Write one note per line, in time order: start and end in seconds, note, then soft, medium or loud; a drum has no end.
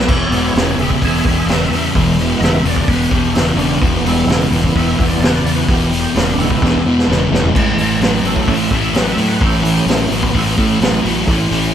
0.05 0.27 E1 medium
0.05 0.08 C5 medium
0.05 kick loud
0.05 crash loud
0.09 0.30 E2 medium
0.09 0.31 B2 medium
0.09 0.30 E4 medium
0.09 0.32 C#5 medium
0.30 0.49 E1 medium
0.30 0.62 G#3 medium
0.30 0.63 B3 medium
0.30 0.55 E4 medium
0.30 0.55 C#5 medium
0.30 open hi-hat medium
0.34 0.54 E2 medium
0.34 0.54 B2 medium
0.55 0.74 E1 medium
0.55 0.77 E2 medium
0.55 0.78 C#3 medium
0.55 0.78 E4 medium
0.55 0.79 C#5 medium
0.55 snare loud
0.55 open hi-hat medium
0.78 0.97 E1 medium
0.78 1.01 E2 medium
0.78 1.01 C#3 medium
0.78 1.00 G#4 medium
0.78 1.01 E5 medium
0.78 open hi-hat medium
0.90 kick medium
1.02 1.21 E1 loud
1.02 1.24 E2 medium
1.02 1.24 B2 medium
1.02 1.23 G#4 medium
1.02 1.25 E5 medium
1.02 kick medium
1.02 open hi-hat medium
1.24 1.44 E1 medium
1.24 1.47 E2 medium
1.24 1.48 B2 medium
1.24 1.47 G#4 medium
1.24 1.48 E5 medium
1.24 kick medium
1.24 open hi-hat medium
1.45 1.66 E1 medium
1.45 1.48 D#5 medium
1.45 open hi-hat medium
1.49 1.70 E2 medium
1.49 1.70 C#3 medium
1.49 1.94 E5 loud
1.49 snare loud
1.62 snare soft
1.69 1.89 E2 medium
1.69 1.93 E2 medium
1.69 1.93 C#3 medium
1.69 open hi-hat medium
1.95 2.32 E1 medium
1.95 2.16 E2 medium
1.95 2.17 B2 medium
1.95 2.62 G#3 soft
1.95 2.62 B3 soft
1.95 2.62 E4 medium
1.95 kick medium
1.95 open hi-hat medium
2.19 2.40 E2 medium
2.19 2.40 B2 medium
2.19 open hi-hat medium
2.38 2.59 E1 medium
2.38 2.63 E2 medium
2.38 2.41 D#5 medium
2.38 open hi-hat medium
2.43 2.63 C#3 medium
2.43 2.66 E5 loud
2.43 snare loud
2.63 2.82 E1 medium
2.63 2.86 E2 medium
2.63 2.87 C#3 medium
2.63 2.89 D5 medium
2.63 open hi-hat medium
2.76 kick medium
2.88 3.07 E1 loud
2.88 3.10 E2 medium
2.88 3.10 B2 medium
2.88 3.12 B4 medium
2.88 kick loud
2.88 open hi-hat medium
3.10 3.33 E2 medium
3.10 3.30 E2 medium
3.10 3.33 B2 medium
3.10 3.34 G4 medium
3.10 kick medium
3.10 open hi-hat medium
3.32 3.52 E1 medium
3.32 3.58 E4 loud
3.32 open hi-hat medium
3.36 3.57 E2 medium
3.36 3.57 C#3 medium
3.36 snare loud
3.56 3.75 E1 medium
3.56 3.80 E2 medium
3.56 3.80 C#3 medium
3.56 3.81 D4 medium
3.56 open hi-hat medium
3.81 4.00 E1 loud
3.81 4.03 E2 medium
3.81 4.03 B2 medium
3.81 4.04 B3 medium
3.81 kick loud
3.81 open hi-hat medium
4.03 4.23 E1 medium
4.03 4.26 E2 medium
4.03 4.26 B2 loud
4.03 4.30 G#3 medium
4.03 5.89 B3 soft
4.03 5.83 E4 medium
4.03 open hi-hat medium
4.08 4.29 G3 medium
4.27 4.46 E1 loud
4.27 4.49 E2 medium
4.27 4.50 C#3 loud
4.27 4.53 G#3 loud
4.27 snare loud
4.27 open hi-hat medium
4.50 4.69 E1 medium
4.50 4.73 E2 medium
4.50 4.73 C#3 medium
4.50 open hi-hat medium
4.64 kick medium
4.75 4.94 E1 loud
4.75 4.96 E2 medium
4.75 4.97 B2 medium
4.75 5.06 E5 medium
4.75 kick medium
4.75 open hi-hat medium
4.99 5.17 E1 medium
4.99 5.20 E2 medium
4.99 5.20 B2 medium
4.99 kick medium
4.99 open hi-hat medium
5.08 5.22 D5 loud
5.19 5.39 E1 medium
5.19 5.43 E2 medium
5.19 5.44 C#3 medium
5.19 open hi-hat medium
5.24 5.38 B4 medium
5.24 snare loud
5.36 5.52 D5 medium
5.36 snare soft
5.43 5.63 E2 medium
5.43 5.66 E2 medium
5.43 5.67 C#3 medium
5.43 open hi-hat medium
5.55 5.69 B4 medium
5.68 6.05 E1 medium
5.68 5.90 E2 medium
5.68 5.90 B2 loud
5.68 5.84 G4 medium
5.68 kick loud
5.68 open hi-hat medium
5.84 5.99 E4 medium
5.92 6.13 E2 medium
5.92 6.13 B2 medium
5.92 open hi-hat medium
6.00 6.15 G4 medium
6.14 6.34 E1 medium
6.14 6.36 E2 medium
6.14 6.36 C#3 medium
6.14 6.31 E4 loud
6.14 snare loud
6.14 open hi-hat medium
6.33 6.47 D4 loud
6.37 6.57 E1 medium
6.37 6.59 E2 medium
6.37 6.59 C#3 medium
6.37 6.94 G#3 medium
6.37 6.48 B3 soft
6.37 6.96 E4 medium
6.37 open hi-hat medium
6.50 6.63 B3 medium
6.50 kick medium
6.61 6.80 E1 loud
6.61 6.83 E2 medium
6.61 6.83 B2 medium
6.61 6.78 D4 medium
6.61 kick medium
6.61 snare medium
6.74 kick medium
6.79 6.94 B3 medium
6.85 7.06 E2 medium
6.85 7.04 E2 medium
6.85 7.07 B2 medium
6.96 7.84 G#3 medium
6.96 7.86 E4 loud
6.96 snare medium
7.08 7.27 E1 medium
7.08 7.30 E2 medium
7.08 7.30 C#3 loud
7.08 snare medium
7.31 7.50 E1 medium
7.31 7.53 E2 medium
7.31 7.53 C#3 medium
7.31 snare medium
7.44 floor tom medium
7.55 7.74 A1 medium
7.55 7.76 A2 medium
7.55 7.77 E3 loud
7.55 kick loud
7.55 crash medium
7.76 7.96 A1 medium
7.76 8.00 A2 medium
7.76 8.00 E3 loud
7.76 open hi-hat medium
8.00 8.19 A1 medium
8.00 8.23 A2 medium
8.00 8.23 F#3 medium
8.00 snare loud
8.00 open hi-hat medium
8.24 8.43 A1 medium
8.24 8.46 A2 medium
8.24 8.46 F#3 medium
8.24 8.56 A3 medium
8.24 8.56 C#4 soft
8.24 8.57 E4 medium
8.24 open hi-hat medium
8.36 kick medium
8.48 8.66 A1 loud
8.48 8.69 A2 medium
8.48 8.70 E3 medium
8.48 8.79 E5 loud
8.48 kick loud
8.48 open hi-hat medium
8.71 8.90 A1 medium
8.71 8.93 A2 medium
8.71 8.93 E3 medium
8.71 kick medium
8.71 open hi-hat medium
8.81 8.96 E5 medium
8.93 9.12 A1 medium
8.93 9.16 A2 medium
8.93 9.16 F#3 medium
8.93 snare loud
8.93 open hi-hat medium
8.97 9.11 B4 medium
9.12 9.26 E5 medium
9.17 9.36 A2 medium
9.17 9.39 A2 medium
9.17 9.39 F#3 medium
9.17 open hi-hat medium
9.27 9.42 B4 medium
9.40 9.78 A1 medium
9.40 9.61 A2 medium
9.40 9.62 E3 loud
9.40 10.09 A3 medium
9.40 kick loud
9.40 open hi-hat medium
9.45 10.10 C#4 soft
9.45 9.60 E4 medium
9.45 9.59 G4 medium
9.61 9.85 A2 medium
9.61 9.85 E3 medium
9.61 9.74 E4 medium
9.61 open hi-hat medium
9.74 9.89 G4 medium
9.86 10.05 A1 loud
9.86 10.09 A2 medium
9.86 10.09 F#3 loud
9.86 10.02 E4 loud
9.86 snare loud
9.86 open hi-hat medium
10.03 10.19 E4 loud
10.10 10.29 A1 medium
10.10 10.32 A2 medium
10.10 10.32 F#3 medium
10.10 open hi-hat medium
10.22 10.36 B3 medium
10.22 kick medium
10.33 10.53 A1 loud
10.33 10.55 A2 medium
10.33 10.55 E3 medium
10.33 kick medium
10.33 open hi-hat medium
10.37 10.51 E4 medium
10.51 10.66 B3 medium
10.57 10.79 A2 medium
10.57 10.77 A2 loud
10.57 10.79 E3 medium
10.57 10.78 A3 medium
10.57 10.79 C#4 soft
10.57 10.65 E4 medium
10.57 kick medium
10.57 open hi-hat medium
10.66 11.26 E4 loud
10.80 10.99 A1 medium
10.80 11.02 A2 medium
10.80 11.02 F#3 medium
10.80 snare loud
10.80 open hi-hat medium
11.03 11.23 A1 medium
11.03 11.25 A2 medium
11.03 11.25 F#3 medium
11.03 open hi-hat medium
11.25 11.46 A1 medium
11.25 11.49 A2 medium
11.25 11.49 E3 loud
11.25 11.74 A3 medium
11.25 11.74 C#4 medium
11.25 11.74 E4 medium
11.25 kick medium
11.25 open hi-hat medium
11.51 11.70 A1 medium
11.51 11.72 A2 medium
11.51 11.73 E3 medium
11.51 open hi-hat medium